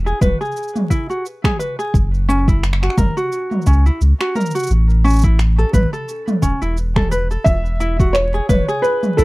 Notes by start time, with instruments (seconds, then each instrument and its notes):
Already playing: sub bass E1
0.06 ukulele G#4, cabasa
0.21 sub bass E1, ukulele B4, kick, mid tom, cabasa
0.41 ukulele G#4, cabasa
0.45 cabasa
0.52 cabasa
0.56 cabasa
0.63 cabasa
0.68 cabasa
0.76 mid tom, cabasa
0.90 ukulele E4, kick, cabasa
1.10 ukulele F#4, cabasa
1.26 cabasa
1.44 ukulele G#4, finger snap, kick, mid tom, cabasa
1.59 ukulele B4, cabasa
1.79 ukulele G#4, cabasa
1.94 sub bass F#1, kick, cabasa
2.14 cabasa
2.29 ukulele C#4, cabasa
2.48 ukulele E4, kick, cabasa
2.63 finger snap, cabasa
2.73 finger snap
2.82 ukulele F#4, finger snap, cabasa
2.90 finger snap
2.97 sub bass F#1, ukulele A#4, kick, mid tom, cabasa
3.17 ukulele F#4, cabasa
3.32 cabasa
3.51 mid tom, cabasa
3.62 cabasa
3.66 sub bass C#2, ukulele C#4, kick, cabasa
3.73 cabasa
3.86 ukulele E4, cabasa
4.01 sub bass C#2, cabasa
4.20 ukulele F#4, finger snap, cabasa
4.35 ukulele A#4, mid tom, cabasa
4.41 cabasa
4.46 cabasa
4.50 cabasa
4.55 ukulele F#4, cabasa
4.59 cabasa
4.63 cabasa
4.67 sub bass A1, cabasa
4.71 cabasa
4.90 cabasa
5.04 ukulele C#4, cabasa
5.07 cabasa
5.10 cabasa
5.13 cabasa
5.16 cabasa
5.19 cabasa
5.21 ukulele E4, kick, cabasa
5.24 cabasa
5.39 finger snap, cabasa
5.58 ukulele A4, cabasa
5.73 sub bass A1, ukulele B4, kick, mid tom, cabasa
5.93 ukulele A4, cabasa
6.09 cabasa
6.28 mid tom, cabasa
6.42 sub bass E1, ukulele C#4, kick, cabasa
6.62 sub bass E1, ukulele E4, cabasa
6.77 cabasa
6.96 ukulele A4, finger snap, kick, mid tom
7.11 ukulele B4, cabasa
7.31 ukulele A4, cabasa
7.44 sub bass E1, felt piano E5, kick, cabasa
7.66 cabasa
7.80 ukulele E4, cabasa
7.99 ukulele F#4, kick, cabasa
8.13 felt piano C#5, finger snap, cabasa
8.34 ukulele G#4, cabasa
8.49 sub bass E1, ukulele B4, kick, mid tom, cabasa
8.68 ukulele G#4, cabasa
8.82 felt piano B4, cabasa
9.03 mid tom, cabasa
9.17 sub bass B1, ukulele E4, felt piano A4, kick, cabasa